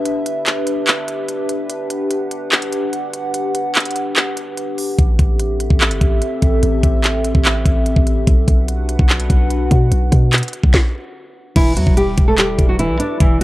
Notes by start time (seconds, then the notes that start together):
Already playing: D4 G4 B4 E5
0.05 closed hi-hat
0.26 closed hi-hat
0.46 clap, closed hi-hat
0.67 closed hi-hat
0.87 clap, closed hi-hat
1.08 closed hi-hat
1.29 closed hi-hat
1.49 closed hi-hat
1.70 F#5, closed hi-hat
1.90 closed hi-hat
2.11 closed hi-hat
2.31 closed hi-hat
2.52 clap, closed hi-hat
2.62 closed hi-hat
2.72 closed hi-hat
2.93 closed hi-hat
3.14 closed hi-hat
3.34 closed hi-hat
3.55 closed hi-hat
3.75 clap, closed hi-hat
3.80 closed hi-hat
3.85 closed hi-hat
3.91 closed hi-hat
3.96 closed hi-hat
4.16 clap, closed hi-hat
4.37 closed hi-hat
4.57 closed hi-hat
4.78 open hi-hat
4.98 A1 C4 A4 E5, kick, closed hi-hat
5.19 A1, kick, closed hi-hat
5.40 closed hi-hat
5.60 closed hi-hat
5.70 A1, kick
5.81 clap, closed hi-hat
5.91 G1, closed hi-hat
6.01 A1, kick, closed hi-hat
6.22 closed hi-hat
6.42 A1, kick, closed hi-hat
6.63 A1, closed hi-hat
6.83 A1, kick, closed hi-hat
7.04 clap, closed hi-hat
7.24 closed hi-hat
7.35 A1, kick
7.45 clap, closed hi-hat
7.66 A1, kick, closed hi-hat
7.86 closed hi-hat
7.96 A1, kick
8.07 closed hi-hat
8.27 B1 D4 F#4 B4 F#5, kick, closed hi-hat
8.48 B1, kick, closed hi-hat
8.68 closed hi-hat
8.89 closed hi-hat
8.99 B1, kick
9.09 clap, closed hi-hat
9.20 closed hi-hat
9.30 B1, kick, closed hi-hat
9.50 closed hi-hat
9.71 B2, kick, closed hi-hat
9.92 B1, closed hi-hat
10.12 B2, kick, closed hi-hat
10.33 clap, closed hi-hat
10.38 closed hi-hat
10.43 closed hi-hat
10.48 closed hi-hat
10.53 closed hi-hat
10.64 B1, kick
10.74 kick, snare
11.56 E1 E3 E4 B4 D5 E5, kick, closed hi-hat, crash
11.76 E2 F#3 F#4, closed hi-hat
11.87 E1, kick
11.97 G3 G4, closed hi-hat
12.18 E1, kick, closed hi-hat
12.28 A3 A4
12.38 G3 G4, clap, closed hi-hat
12.59 E1, kick, closed hi-hat
12.69 F#3 F#4
12.79 E3 E4, closed hi-hat
12.90 B1
13.00 D4 D5, closed hi-hat
13.20 E1 E3 E4, kick, closed hi-hat